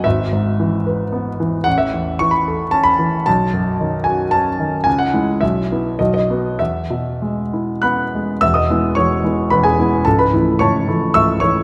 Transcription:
<<
  \new Staff \with { instrumentName = "Grand piano" } { \time 3/4 \key e \major \tempo 4 = 111 e''2~ e''8 r8 | fis''16 e''8. cis'''16 b''8. a''16 b''8. | a''4. gis''8 a''4 | gis''16 fis''8. e''4 dis''16 dis''8. |
e''2 <fis'' b'' fis'''>4 | <e'' e'''>16 <dis'' dis'''>8. <cis'' cis'''>4 <b' b''>16 <gis' gis''>8. | <a' a''>16 <b' b''>8. <cis'' a'' cis'''>4 <e'' cis''' e'''>8 <cis'' cis'''>8 | }
  \new Staff \with { instrumentName = "Grand piano" } { \clef bass \time 3/4 \key e \major gis,,8 gis,8 e8 b'8 b8 e8 | a,,8 e,8 e8 a'8 cis'8 e8 | b,,8 fis,8 dis8 fis'8 cis'8 dis8 | cis,8 <gis e'>8 b,,8 <b e'>8 b,,8 <b fis'>8 |
e,8 b,8 gis8 e'8 b8 gis8 | <e,, e,>8 <gis b e'>8 <e,, e,>8 <gis b e'>8 <e,, e,>8 <gis b e'>8 | <cis,, cis,>8 <e a e'>8 <cis,, cis,>8 <e a e'>8 <cis,, cis,>8 <e a e'>8 | }
>>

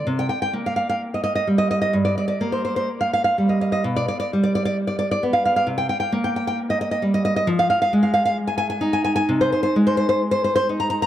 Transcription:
\new Staff \with { instrumentName = "Nylon-string guitar" } { \time 4/4 \key c \dorian \tempo 4 = 65 << { r32 g''32 g''32 g''32 r32 f''32 f''32 f''32 r32 ees''32 ees''32 ees''32 r32 ees''32 ees''32 ees''32 r32 d''32 d''32 d''32 r32 c''32 c''32 c''32 r32 f''32 f''32 f''32 r32 ees''32 ees''32 ees''32 | r32 d''32 d''32 d''32 r32 d''32 d''32 d''32 r32 d''32 d''32 d''32 r32 f''32 f''32 f''32 r32 g''32 g''32 g''32 r32 g''32 g''32 g''32 r32 ees''32 ees''32 ees''32 r32 ees''32 ees''32 ees''32 | \key f \dorian r32 f''32 f''32 f''32 r32 f''32 f''32 f''32 r32 aes''32 aes''32 aes''32 r32 aes''32 aes''32 aes''32 r32 c''32 c''32 c''32 r32 c''32 c''32 c''32 r32 c''32 c''32 c''32 r32 bes''32 bes''32 bes''32 | } \\ { c16 r16 bes4 g8 g,16 r16 bes4 g8 | b,16 r16 g4 b8 c16 r16 bes4 g8 | f16 r16 aes4 ees'8 c16 r16 aes4 ees'8 | } >> }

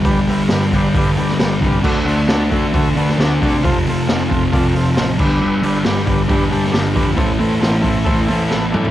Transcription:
<<
  \new Staff \with { instrumentName = "Transistor combo organ" } { \time 4/4 \key g \mixolydian \tempo 4 = 135 <g' b' d''>8 <g' b' e''>8 <g' b' d''>8 <g' b' d''>8 <g' b' d''>8 <g' b' d''>8 <g' b' d''>8 <g' b' d''>8 | <fis' a' d''>8 <fis' a' c''>8 <fis' a' d''>8 <fis' a' e''>8 <fis' a' e''>8 <fis' a' b'>8 <fis' a' d''>8 <fis' a' d''>8 | <f' a' c''>8 <f' a' c''>8 <f' a' c''>8 <f' a' c''>8 <f' a' d''>8 <f' a' c''>8 <f' a' c''>8 <d' g' b'>8~ | <d' g' b'>8 <d' g' b'>8 <d' g' b'>8 <d' g' b'>8 <d' g' b'>8 <d' g' a'>8 <d' g' a'>8 <d' g' b'>8 |
<e' a' c''>8 <e' a' c''>8 <e' a' c''>8 <e' a' c''>8 <e' a' c''>8 <e' a' c''>8 <e' a' b'>8 <e' a' d''>8 | }
  \new Staff \with { instrumentName = "Distorted electric guitar" } { \clef bass \time 4/4 \key g \mixolydian <g, d g>8 <g, d g>8 <g, d g>8 <g, d g>8 <g, d g>8 <g, d g>8 <g, d g>8 <g, d g>8 | <d a d'>8 <d a d'>8 <d a d'>8 <d a d'>8 <d a d'>8 <d a d'>8 <d a d'>8 <d a d'>8 | <f, c f>8 <f, c f>8 <f, c f>8 <f, c f>8 <f, c f>8 <f, c f>8 <f, c f>8 <g, d g>8 | <g, d g>8 <g, d g>8 <g, d g>8 <g, d g>8 <g, d g>8 <g, d g>8 <g, d g>8 <g, d g>8 |
<a, e a>8 <a, e a>8 <a, e a>8 <a, e a>8 <a, e a>8 <a, e a>8 <a, e a>8 <a, e a>8 | }
  \new Staff \with { instrumentName = "Picked electric bass" } { \clef bass \time 4/4 \key g \mixolydian g,,8 g,,8 g,,8 g,,8 g,8 g,8 g,,8 c,8 | d,8 d,8 d,8 d,8 d8 d8 d,8 c8 | f,,8 f,,8 f,,8 f,,8 f,8 f,8 a,,8 g,,8 | g,,8 g,,8 g,,8 g,,8 g,8 g,8 g,,8 f,8 |
a,,8 a,,8 a,,8 a,,8 a,8 a,8 a,,8 g,8 | }
  \new DrumStaff \with { instrumentName = "Drums" } \drummode { \time 4/4 <hho bd>8 hho8 <hho sn>16 sn16 <hho bd>8 <hho bd>8 hho16 sn16 <hho sn>8 <hho bd>8 | <cymc bd>8 hho8 <hho sn>8 <hho bd>8 <hho bd>8 hho16 sn16 <hho sn>8 <hho bd>8 | <hho bd>8 hho8 <hho sn>8 <hho bd>8 <hho bd>8 hho8 <hho sn>8 <cymc bd>8 | r8 hho8 <hho sn>16 sn16 <hho bd>8 <hho bd>8 hho16 sn16 <hho sn>8 <hho bd>8 |
<hho bd>8 hho8 <hho sn>8 <hho bd>8 <hho bd>8 hho8 sn8 toml16 tomfh16 | }
>>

